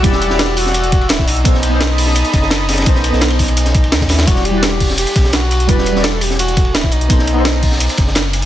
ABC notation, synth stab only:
X:1
M:4/4
L:1/16
Q:1/4=170
K:Em
V:1 name="Synth stab"
[G,EFd]3 [G,EFd]12- [G,EFd] | [B,^DAc]3 [B,DAc]12- [B,DAc] | [B,^DAc]3 [B,DAc]12- [B,DAc] | [G,EFd]3 [G,Edf]12- [G,Edf] |
[G,EFd]3 [G,EFd]12- [G,EFd] | [B,^DAc]3 [B,DAc]12- [B,DAc] |]